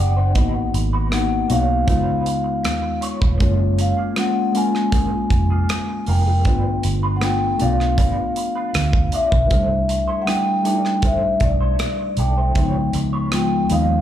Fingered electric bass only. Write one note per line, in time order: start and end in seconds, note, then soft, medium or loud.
0.00 0.36 F#1 medium
0.36 0.70 G#1 medium
0.74 1.42 G#1 medium
1.50 1.84 B1 medium
1.88 2.65 C#2 medium
2.65 2.99 D#2 medium
3.22 3.39 D#1 medium
3.41 3.92 F#1 loud
5.31 5.65 F1 medium
6.08 6.46 F1 medium
6.46 6.80 G1 medium
6.84 7.52 G1 medium
7.62 7.95 B1 medium
8.75 9.09 D2 medium
9.33 9.49 B1 medium
9.51 10.02 C2 medium
11.41 11.75 B1 medium
12.17 12.51 B1 medium
12.56 12.90 C#2 medium
12.94 13.62 C#2 medium
13.71 14.01 D#2 medium